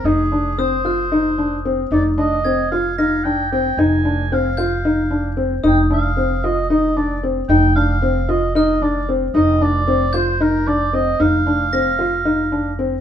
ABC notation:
X:1
M:7/8
L:1/8
Q:1/4=113
K:Eb
V:1 name="Glockenspiel"
z2 e' f'4- | f'2 a'2 b'3- | b'3 g'4 | e'6 z |
z4 f'3- | f'3 g'4- | g'2 b'4- b' |]
V:2 name="Oboe"
A2 c4 z | d e2 f f g g | a2 f4 z | g f2 e e d z |
g f2 e e d z | e d2 c B d e | f6 z |]
V:3 name="Felt piano"
E D C F E D C | E D C F E D C | E D C F E D C | E D C F E D C |
E D C F E D C | E D C F E D C | E D C F E D C |]
V:4 name="Upright bass" clef=bass
F,,,6- F,,, | F,,,6- F,,, | F,,,6- F,,, | F,,,6- F,,, |
F,,,6- F,,, | F,,,6- F,,, | F,,,6- F,,, |]